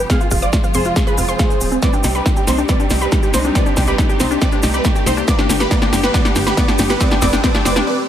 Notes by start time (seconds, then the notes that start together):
Already playing: riser
0.10 C3 F3 G#3 C4 F4 G#4 F5 F6, kick, snare, closed hi-hat, cabasa
0.21 F4 F5, closed hi-hat, cabasa
0.31 F1 F4 G#4 F5, kick, open hi-hat, cabasa
0.42 F4 C5 D5 D6, closed hi-hat, cabasa
0.53 F4 G#4 F5, kick, snare, closed hi-hat, cabasa
0.64 F4 C5 F5, closed hi-hat, cabasa
0.74 F1 C4 G#4 C5 C6, open hi-hat, cabasa
0.85 F4 F5, closed hi-hat, cabasa
0.96 F4 G#4 F5, kick, snare, closed hi-hat, cabasa
1.07 G#4 B4 C5 B5, closed hi-hat, cabasa
1.18 F1 C4 F4 F5, open hi-hat, cabasa
1.28 F4 G#4 C5 C6, closed hi-hat, cabasa
1.39 F5, kick, snare, closed hi-hat, cabasa
1.50 C5, closed hi-hat, cabasa
1.61 D#1 C4, open hi-hat, cabasa
1.72 C4, closed hi-hat, cabasa
1.82 G3 C4 D4 D#4 B4 D5 D6, kick, snare, closed hi-hat, cabasa
1.93 D4 G4 G5, closed hi-hat, cabasa
2.03 C2 D#4 G4 G5, snare, open hi-hat, cabasa
2.15 G4 B4 B5, cabasa
2.26 D#4 G4 G5, kick, snare, closed hi-hat, cabasa
2.36 G4 G5, closed hi-hat, cabasa
2.47 C2 C4 D#4 C5 C6, snare, open hi-hat, cabasa
2.58 D4 G4 G5, closed hi-hat, cabasa
2.69 C4 B4 D5 D6, kick, snare, closed hi-hat, cabasa
2.80 D4 G4 G5, closed hi-hat, cabasa
2.90 C2 D#4 G4 G5, snare, open hi-hat, cabasa
3.01 G4 B4 B5, closed hi-hat, cabasa
3.12 D#4 G4 G5, kick, snare, closed hi-hat, cabasa
3.23 G4 G5, closed hi-hat, cabasa
3.34 C2 C4 D#4 C5 C6, snare, open hi-hat, cabasa
3.44 D4 G4 G5, closed hi-hat, cabasa
3.55 C4 B4 D5 D6, kick, snare, closed hi-hat, cabasa
3.66 D4 G4 G5, closed hi-hat, cabasa
3.77 C2 D#4 G4 G5, kick, snare, open hi-hat, cabasa
3.87 G4 B4 B5, closed hi-hat, cabasa
3.98 D#4 G4 G5, kick, snare, closed hi-hat, cabasa
4.09 G4 G5, closed hi-hat, cabasa
4.20 C2 C4 D#4 C5 C6, snare, open hi-hat, cabasa
4.31 D4 G4 G5, cabasa
4.41 C4 B4 D5 D6, kick, snare, closed hi-hat, cabasa
4.52 D4 G4 G5, closed hi-hat, cabasa
4.63 C2 D#4 G4 G5, snare, open hi-hat, cabasa
4.74 G4 B4 B5, closed hi-hat, cabasa
4.85 D#4 G4 G5, kick, snare, closed hi-hat, cabasa
4.95 G4 G5, closed hi-hat, cabasa
5.06 C2 C4 D#4 C5 C6, snare, open hi-hat, cabasa
5.17 D4 G4 G5, closed hi-hat, cabasa
5.28 D3 G3 B3 G4 B4 D5 D6, kick, snare, closed hi-hat, cabasa
5.39 D4 G4 G5, snare, closed hi-hat, cabasa
5.49 G1 D4 G4 G5, snare, open hi-hat, cabasa
5.60 G4 B4 B5, snare, closed hi-hat, cabasa
5.71 B3 B4 D5 D6, kick, snare, closed hi-hat, cabasa
5.82 D4 G4 G5, snare, closed hi-hat, cabasa
5.93 G1 D4 G4 G5, snare, open hi-hat, cabasa
6.03 G4 B4 B5, snare, closed hi-hat, cabasa
6.14 B3 B4 D5 D6, kick, snare, closed hi-hat, cabasa
6.25 D4 G4 G5, snare, closed hi-hat, cabasa
6.36 G1 D4 G4 G5, snare, open hi-hat, cabasa
6.47 G4 B4 B5, snare, closed hi-hat, cabasa
6.57 B3 B4 D5 D6, kick, snare, closed hi-hat, cabasa
6.68 D4 G4 G5, snare, closed hi-hat, cabasa
6.78 G1 D4 G4 G5, snare, open hi-hat, cabasa
6.89 G4 B4 B5, snare, closed hi-hat, cabasa
7.00 C3 F3 G#3 C4 F4 B4 D5 D6, kick, snare, closed hi-hat, cabasa
7.11 D4 G4 G5, snare, closed hi-hat, cabasa
7.22 F1 C4 B4 D5 D6, kick, snare, open hi-hat, cabasa
7.33 D4 G4 G5, snare, cabasa
7.43 C4 B4 D5 D6, kick, snare, closed hi-hat, cabasa
7.54 D4 G4 G5, snare, closed hi-hat, cabasa
7.65 F1 C4 B4 D5 D6, snare, open hi-hat, cabasa
7.76 D4 G4 G5, snare, closed hi-hat, cabasa
7.87 B4 D5
7.98 G4